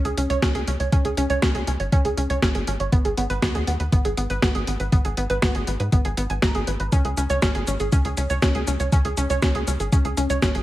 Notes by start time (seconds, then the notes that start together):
0.05 C#2 G#4, closed hi-hat
0.17 C#2 C#4, closed hi-hat
0.30 C#2 C#5, closed hi-hat
0.42 C#2 C#4, kick, snare, closed hi-hat
0.55 C#2 G#4, closed hi-hat
0.67 C#2 C#4, closed hi-hat
0.80 C#2 C#5, closed hi-hat
0.92 C#2 C#4, kick, closed hi-hat
1.05 C#2 G#4, closed hi-hat
1.17 C#2 C#4, closed hi-hat
1.30 C#2 C#5, closed hi-hat
1.42 C#2 C#4, kick, snare, closed hi-hat
1.55 C#2 G#4, closed hi-hat
1.67 C#2 C#4, closed hi-hat
1.80 G#1 C#5, closed hi-hat
1.92 C#2 C#4, kick, closed hi-hat
2.05 C#2 G#4, closed hi-hat
2.17 C#2 C#4, closed hi-hat
2.30 C#2 C#5, closed hi-hat
2.42 G#1 C#4, kick, snare, closed hi-hat
2.55 G#1 G#4, closed hi-hat
2.67 G#1 C#4, closed hi-hat
2.80 G#1 C#5, closed hi-hat
2.92 G#1 B3, kick, closed hi-hat
3.05 G#1 G#4, closed hi-hat
3.17 G#1 B3, closed hi-hat
3.30 G#1 B4, closed hi-hat
3.42 D#2 B3, kick, snare, closed hi-hat
3.55 D#2 G#4, closed hi-hat
3.67 D#2 B3, closed hi-hat
3.80 D#2 B4, closed hi-hat
3.92 G#1 B3, kick, closed hi-hat
4.05 G#1 G#4, closed hi-hat
4.17 G#1 B3, closed hi-hat
4.30 G#1 B4, closed hi-hat
4.42 G#1 B3, kick, snare, closed hi-hat
4.55 G#1 G#4, closed hi-hat
4.67 G#1 B3, closed hi-hat
4.80 G#1 B4, closed hi-hat
4.92 G#1 B3, kick, closed hi-hat
5.05 G#1 G#4, closed hi-hat
5.17 G#1 B3, closed hi-hat
5.30 G#1 B4, closed hi-hat
5.42 G#1 B3, kick, snare, closed hi-hat
5.55 G#1 G#4, closed hi-hat
5.67 G#1 B3, closed hi-hat
5.80 G#2 B4, closed hi-hat
5.92 G#1 B3, kick, closed hi-hat
6.05 G#1 G#4, closed hi-hat
6.17 G#1 B3, closed hi-hat
6.30 G#1 G#5, closed hi-hat
6.42 G#1 A#5, kick, snare, closed hi-hat
6.55 G#1 G#4, closed hi-hat
6.67 G#1 B4, closed hi-hat
6.80 G#1 B4, closed hi-hat
6.92 C#2 C#4, kick, closed hi-hat, cabasa
7.05 C#2 G#4, closed hi-hat
7.17 C#2 C#4, closed hi-hat, cabasa
7.30 C#2 C#5, closed hi-hat, cabasa
7.42 G#1 C#4, kick, snare, closed hi-hat, cabasa
7.55 G#1 G#4, closed hi-hat
7.67 G#1 C#4, closed hi-hat, cabasa
7.80 G#1 G#4, closed hi-hat, cabasa
7.92 C#2 C#4, kick, closed hi-hat, cabasa
8.05 C#2 G#4, closed hi-hat
8.17 C#2 C#4, closed hi-hat, cabasa
8.30 C#2 C#5, closed hi-hat, cabasa
8.42 C#2 C#4, kick, snare, closed hi-hat, cabasa
8.55 C#2 G#4, closed hi-hat
8.67 C#2 C#4, closed hi-hat, cabasa
8.80 C#2 C#5, closed hi-hat, cabasa
8.92 C#2 C#4, kick, closed hi-hat, cabasa
9.05 C#2 G#4, closed hi-hat
9.17 C#2 C#4, closed hi-hat, cabasa
9.30 C#2 C#5, closed hi-hat, cabasa
9.42 C#2 C#4, kick, snare, closed hi-hat, cabasa
9.55 C#2 G#4, closed hi-hat
9.67 C#2 C#4, closed hi-hat, cabasa
9.80 G#1 G#4, closed hi-hat, cabasa
9.92 C#2 C#4, kick, closed hi-hat, cabasa
10.05 C#2 G#4, closed hi-hat
10.17 C#2 C#4, closed hi-hat, cabasa
10.30 C#2 C#5, closed hi-hat, cabasa
10.42 G#1 C#4, kick, snare, closed hi-hat, cabasa
10.55 G#1 G#4, closed hi-hat